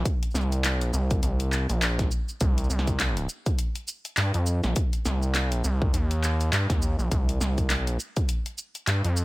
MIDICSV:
0, 0, Header, 1, 3, 480
1, 0, Start_track
1, 0, Tempo, 588235
1, 45, Time_signature, 4, 2, 24, 8
1, 7545, End_track
2, 0, Start_track
2, 0, Title_t, "Analog synth bass"
2, 0, Program_c, 0, 38
2, 281, Note_on_c, 0, 36, 95
2, 608, Note_off_c, 0, 36, 0
2, 608, Note_on_c, 0, 35, 95
2, 747, Note_off_c, 0, 35, 0
2, 762, Note_on_c, 0, 36, 96
2, 987, Note_off_c, 0, 36, 0
2, 1002, Note_on_c, 0, 36, 98
2, 1360, Note_off_c, 0, 36, 0
2, 1384, Note_on_c, 0, 34, 96
2, 1709, Note_off_c, 0, 34, 0
2, 1966, Note_on_c, 0, 36, 96
2, 2189, Note_off_c, 0, 36, 0
2, 2203, Note_on_c, 0, 36, 95
2, 2668, Note_off_c, 0, 36, 0
2, 3408, Note_on_c, 0, 43, 94
2, 3523, Note_off_c, 0, 43, 0
2, 3545, Note_on_c, 0, 41, 95
2, 3762, Note_off_c, 0, 41, 0
2, 3786, Note_on_c, 0, 34, 98
2, 3869, Note_off_c, 0, 34, 0
2, 4126, Note_on_c, 0, 36, 93
2, 4453, Note_off_c, 0, 36, 0
2, 4453, Note_on_c, 0, 35, 93
2, 4589, Note_off_c, 0, 35, 0
2, 4606, Note_on_c, 0, 36, 97
2, 4829, Note_off_c, 0, 36, 0
2, 4845, Note_on_c, 0, 39, 99
2, 5309, Note_off_c, 0, 39, 0
2, 5323, Note_on_c, 0, 43, 97
2, 5441, Note_off_c, 0, 43, 0
2, 5465, Note_on_c, 0, 39, 97
2, 5682, Note_off_c, 0, 39, 0
2, 5701, Note_on_c, 0, 34, 99
2, 5787, Note_off_c, 0, 34, 0
2, 5807, Note_on_c, 0, 36, 97
2, 6030, Note_off_c, 0, 36, 0
2, 6043, Note_on_c, 0, 36, 96
2, 6369, Note_off_c, 0, 36, 0
2, 6369, Note_on_c, 0, 35, 96
2, 6508, Note_off_c, 0, 35, 0
2, 7241, Note_on_c, 0, 43, 96
2, 7360, Note_off_c, 0, 43, 0
2, 7381, Note_on_c, 0, 41, 97
2, 7545, Note_off_c, 0, 41, 0
2, 7545, End_track
3, 0, Start_track
3, 0, Title_t, "Drums"
3, 44, Note_on_c, 9, 36, 125
3, 45, Note_on_c, 9, 42, 78
3, 45, Note_on_c, 9, 82, 43
3, 126, Note_off_c, 9, 36, 0
3, 127, Note_off_c, 9, 42, 0
3, 127, Note_off_c, 9, 82, 0
3, 185, Note_on_c, 9, 42, 51
3, 185, Note_on_c, 9, 82, 9
3, 251, Note_off_c, 9, 82, 0
3, 251, Note_on_c, 9, 82, 13
3, 267, Note_off_c, 9, 42, 0
3, 286, Note_off_c, 9, 82, 0
3, 286, Note_on_c, 9, 38, 52
3, 286, Note_on_c, 9, 82, 75
3, 368, Note_off_c, 9, 38, 0
3, 368, Note_off_c, 9, 82, 0
3, 426, Note_on_c, 9, 42, 38
3, 426, Note_on_c, 9, 82, 31
3, 508, Note_off_c, 9, 42, 0
3, 508, Note_off_c, 9, 82, 0
3, 526, Note_on_c, 9, 38, 36
3, 526, Note_on_c, 9, 39, 126
3, 526, Note_on_c, 9, 42, 81
3, 526, Note_on_c, 9, 82, 42
3, 608, Note_off_c, 9, 38, 0
3, 608, Note_off_c, 9, 39, 0
3, 608, Note_off_c, 9, 42, 0
3, 608, Note_off_c, 9, 82, 0
3, 665, Note_on_c, 9, 42, 54
3, 665, Note_on_c, 9, 82, 22
3, 746, Note_off_c, 9, 42, 0
3, 746, Note_off_c, 9, 82, 0
3, 764, Note_on_c, 9, 82, 74
3, 846, Note_off_c, 9, 82, 0
3, 903, Note_on_c, 9, 42, 37
3, 903, Note_on_c, 9, 82, 30
3, 905, Note_on_c, 9, 36, 113
3, 985, Note_off_c, 9, 42, 0
3, 985, Note_off_c, 9, 82, 0
3, 986, Note_off_c, 9, 36, 0
3, 1003, Note_on_c, 9, 42, 78
3, 1003, Note_on_c, 9, 82, 41
3, 1084, Note_off_c, 9, 42, 0
3, 1084, Note_off_c, 9, 82, 0
3, 1142, Note_on_c, 9, 42, 53
3, 1142, Note_on_c, 9, 82, 21
3, 1223, Note_off_c, 9, 42, 0
3, 1223, Note_off_c, 9, 82, 0
3, 1244, Note_on_c, 9, 39, 67
3, 1244, Note_on_c, 9, 82, 74
3, 1326, Note_off_c, 9, 39, 0
3, 1326, Note_off_c, 9, 82, 0
3, 1384, Note_on_c, 9, 42, 38
3, 1384, Note_on_c, 9, 82, 32
3, 1465, Note_off_c, 9, 42, 0
3, 1465, Note_off_c, 9, 82, 0
3, 1487, Note_on_c, 9, 39, 126
3, 1487, Note_on_c, 9, 42, 83
3, 1487, Note_on_c, 9, 82, 42
3, 1569, Note_off_c, 9, 39, 0
3, 1569, Note_off_c, 9, 42, 0
3, 1569, Note_off_c, 9, 82, 0
3, 1625, Note_on_c, 9, 36, 111
3, 1625, Note_on_c, 9, 38, 38
3, 1625, Note_on_c, 9, 42, 52
3, 1625, Note_on_c, 9, 82, 21
3, 1706, Note_off_c, 9, 38, 0
3, 1706, Note_off_c, 9, 42, 0
3, 1706, Note_off_c, 9, 82, 0
3, 1707, Note_off_c, 9, 36, 0
3, 1725, Note_on_c, 9, 82, 75
3, 1807, Note_off_c, 9, 82, 0
3, 1866, Note_on_c, 9, 82, 31
3, 1948, Note_off_c, 9, 82, 0
3, 1963, Note_on_c, 9, 42, 76
3, 1963, Note_on_c, 9, 82, 42
3, 1967, Note_on_c, 9, 36, 117
3, 2045, Note_off_c, 9, 42, 0
3, 2045, Note_off_c, 9, 82, 0
3, 2048, Note_off_c, 9, 36, 0
3, 2104, Note_on_c, 9, 42, 51
3, 2104, Note_on_c, 9, 82, 20
3, 2154, Note_off_c, 9, 82, 0
3, 2154, Note_on_c, 9, 82, 17
3, 2186, Note_off_c, 9, 42, 0
3, 2206, Note_off_c, 9, 82, 0
3, 2206, Note_on_c, 9, 82, 76
3, 2276, Note_off_c, 9, 82, 0
3, 2276, Note_on_c, 9, 38, 52
3, 2276, Note_on_c, 9, 82, 12
3, 2346, Note_off_c, 9, 82, 0
3, 2346, Note_on_c, 9, 36, 64
3, 2346, Note_on_c, 9, 42, 36
3, 2346, Note_on_c, 9, 82, 33
3, 2357, Note_off_c, 9, 38, 0
3, 2428, Note_off_c, 9, 36, 0
3, 2428, Note_off_c, 9, 42, 0
3, 2428, Note_off_c, 9, 82, 0
3, 2446, Note_on_c, 9, 38, 37
3, 2446, Note_on_c, 9, 39, 125
3, 2446, Note_on_c, 9, 42, 77
3, 2446, Note_on_c, 9, 82, 43
3, 2528, Note_off_c, 9, 38, 0
3, 2528, Note_off_c, 9, 39, 0
3, 2528, Note_off_c, 9, 42, 0
3, 2528, Note_off_c, 9, 82, 0
3, 2586, Note_on_c, 9, 42, 52
3, 2586, Note_on_c, 9, 82, 22
3, 2668, Note_off_c, 9, 42, 0
3, 2668, Note_off_c, 9, 82, 0
3, 2686, Note_on_c, 9, 82, 74
3, 2767, Note_off_c, 9, 82, 0
3, 2825, Note_on_c, 9, 42, 36
3, 2825, Note_on_c, 9, 82, 33
3, 2826, Note_on_c, 9, 36, 106
3, 2907, Note_off_c, 9, 42, 0
3, 2907, Note_off_c, 9, 82, 0
3, 2908, Note_off_c, 9, 36, 0
3, 2926, Note_on_c, 9, 42, 75
3, 2926, Note_on_c, 9, 82, 44
3, 3007, Note_off_c, 9, 42, 0
3, 3007, Note_off_c, 9, 82, 0
3, 3064, Note_on_c, 9, 42, 51
3, 3064, Note_on_c, 9, 82, 21
3, 3146, Note_off_c, 9, 42, 0
3, 3146, Note_off_c, 9, 82, 0
3, 3165, Note_on_c, 9, 82, 79
3, 3247, Note_off_c, 9, 82, 0
3, 3305, Note_on_c, 9, 42, 37
3, 3305, Note_on_c, 9, 82, 34
3, 3386, Note_off_c, 9, 42, 0
3, 3386, Note_off_c, 9, 82, 0
3, 3404, Note_on_c, 9, 39, 124
3, 3404, Note_on_c, 9, 42, 82
3, 3486, Note_off_c, 9, 39, 0
3, 3486, Note_off_c, 9, 42, 0
3, 3543, Note_on_c, 9, 42, 51
3, 3543, Note_on_c, 9, 82, 22
3, 3625, Note_off_c, 9, 42, 0
3, 3625, Note_off_c, 9, 82, 0
3, 3643, Note_on_c, 9, 82, 79
3, 3725, Note_off_c, 9, 82, 0
3, 3783, Note_on_c, 9, 38, 52
3, 3783, Note_on_c, 9, 82, 32
3, 3864, Note_off_c, 9, 38, 0
3, 3864, Note_off_c, 9, 82, 0
3, 3884, Note_on_c, 9, 42, 77
3, 3884, Note_on_c, 9, 82, 44
3, 3887, Note_on_c, 9, 36, 117
3, 3965, Note_off_c, 9, 42, 0
3, 3965, Note_off_c, 9, 82, 0
3, 3969, Note_off_c, 9, 36, 0
3, 4023, Note_on_c, 9, 42, 50
3, 4023, Note_on_c, 9, 82, 22
3, 4105, Note_off_c, 9, 42, 0
3, 4105, Note_off_c, 9, 82, 0
3, 4125, Note_on_c, 9, 38, 53
3, 4125, Note_on_c, 9, 82, 80
3, 4207, Note_off_c, 9, 38, 0
3, 4207, Note_off_c, 9, 82, 0
3, 4264, Note_on_c, 9, 82, 35
3, 4345, Note_off_c, 9, 82, 0
3, 4363, Note_on_c, 9, 38, 37
3, 4363, Note_on_c, 9, 39, 116
3, 4363, Note_on_c, 9, 42, 77
3, 4363, Note_on_c, 9, 82, 45
3, 4445, Note_off_c, 9, 38, 0
3, 4445, Note_off_c, 9, 39, 0
3, 4445, Note_off_c, 9, 42, 0
3, 4445, Note_off_c, 9, 82, 0
3, 4503, Note_on_c, 9, 42, 52
3, 4503, Note_on_c, 9, 82, 23
3, 4584, Note_off_c, 9, 42, 0
3, 4584, Note_off_c, 9, 82, 0
3, 4605, Note_on_c, 9, 82, 78
3, 4686, Note_off_c, 9, 82, 0
3, 4746, Note_on_c, 9, 36, 102
3, 4828, Note_off_c, 9, 36, 0
3, 4846, Note_on_c, 9, 42, 77
3, 4846, Note_on_c, 9, 82, 45
3, 4928, Note_off_c, 9, 42, 0
3, 4928, Note_off_c, 9, 82, 0
3, 4985, Note_on_c, 9, 42, 52
3, 4985, Note_on_c, 9, 82, 22
3, 5066, Note_off_c, 9, 42, 0
3, 5066, Note_off_c, 9, 82, 0
3, 5089, Note_on_c, 9, 39, 63
3, 5089, Note_on_c, 9, 82, 80
3, 5170, Note_off_c, 9, 39, 0
3, 5170, Note_off_c, 9, 82, 0
3, 5228, Note_on_c, 9, 42, 37
3, 5228, Note_on_c, 9, 82, 35
3, 5310, Note_off_c, 9, 42, 0
3, 5310, Note_off_c, 9, 82, 0
3, 5329, Note_on_c, 9, 39, 119
3, 5329, Note_on_c, 9, 42, 79
3, 5329, Note_on_c, 9, 82, 46
3, 5410, Note_off_c, 9, 39, 0
3, 5410, Note_off_c, 9, 42, 0
3, 5410, Note_off_c, 9, 82, 0
3, 5465, Note_on_c, 9, 36, 101
3, 5467, Note_on_c, 9, 38, 41
3, 5467, Note_on_c, 9, 42, 53
3, 5467, Note_on_c, 9, 82, 23
3, 5547, Note_off_c, 9, 36, 0
3, 5549, Note_off_c, 9, 38, 0
3, 5549, Note_off_c, 9, 42, 0
3, 5549, Note_off_c, 9, 82, 0
3, 5567, Note_on_c, 9, 82, 79
3, 5648, Note_off_c, 9, 82, 0
3, 5707, Note_on_c, 9, 82, 34
3, 5788, Note_off_c, 9, 82, 0
3, 5806, Note_on_c, 9, 36, 114
3, 5807, Note_on_c, 9, 42, 79
3, 5807, Note_on_c, 9, 82, 45
3, 5887, Note_off_c, 9, 36, 0
3, 5888, Note_off_c, 9, 42, 0
3, 5888, Note_off_c, 9, 82, 0
3, 5948, Note_on_c, 9, 42, 53
3, 5948, Note_on_c, 9, 82, 23
3, 6030, Note_off_c, 9, 42, 0
3, 6030, Note_off_c, 9, 82, 0
3, 6048, Note_on_c, 9, 38, 56
3, 6048, Note_on_c, 9, 82, 79
3, 6129, Note_off_c, 9, 38, 0
3, 6129, Note_off_c, 9, 82, 0
3, 6184, Note_on_c, 9, 42, 37
3, 6184, Note_on_c, 9, 82, 34
3, 6185, Note_on_c, 9, 36, 62
3, 6266, Note_off_c, 9, 42, 0
3, 6266, Note_off_c, 9, 82, 0
3, 6267, Note_off_c, 9, 36, 0
3, 6284, Note_on_c, 9, 38, 38
3, 6284, Note_on_c, 9, 39, 115
3, 6284, Note_on_c, 9, 42, 78
3, 6284, Note_on_c, 9, 82, 46
3, 6365, Note_off_c, 9, 38, 0
3, 6365, Note_off_c, 9, 39, 0
3, 6365, Note_off_c, 9, 42, 0
3, 6365, Note_off_c, 9, 82, 0
3, 6425, Note_on_c, 9, 42, 54
3, 6425, Note_on_c, 9, 82, 24
3, 6506, Note_off_c, 9, 42, 0
3, 6506, Note_off_c, 9, 82, 0
3, 6525, Note_on_c, 9, 82, 79
3, 6607, Note_off_c, 9, 82, 0
3, 6663, Note_on_c, 9, 42, 36
3, 6663, Note_on_c, 9, 82, 34
3, 6665, Note_on_c, 9, 36, 105
3, 6744, Note_off_c, 9, 42, 0
3, 6744, Note_off_c, 9, 82, 0
3, 6746, Note_off_c, 9, 36, 0
3, 6763, Note_on_c, 9, 42, 77
3, 6763, Note_on_c, 9, 82, 44
3, 6845, Note_off_c, 9, 42, 0
3, 6845, Note_off_c, 9, 82, 0
3, 6903, Note_on_c, 9, 42, 53
3, 6903, Note_on_c, 9, 82, 22
3, 6984, Note_off_c, 9, 42, 0
3, 6984, Note_off_c, 9, 82, 0
3, 7002, Note_on_c, 9, 82, 83
3, 7084, Note_off_c, 9, 82, 0
3, 7140, Note_on_c, 9, 42, 39
3, 7140, Note_on_c, 9, 82, 35
3, 7222, Note_off_c, 9, 42, 0
3, 7222, Note_off_c, 9, 82, 0
3, 7241, Note_on_c, 9, 39, 116
3, 7241, Note_on_c, 9, 42, 81
3, 7241, Note_on_c, 9, 82, 46
3, 7323, Note_off_c, 9, 39, 0
3, 7323, Note_off_c, 9, 42, 0
3, 7323, Note_off_c, 9, 82, 0
3, 7381, Note_on_c, 9, 42, 52
3, 7381, Note_on_c, 9, 82, 23
3, 7462, Note_off_c, 9, 42, 0
3, 7462, Note_off_c, 9, 82, 0
3, 7481, Note_on_c, 9, 82, 81
3, 7545, Note_off_c, 9, 82, 0
3, 7545, End_track
0, 0, End_of_file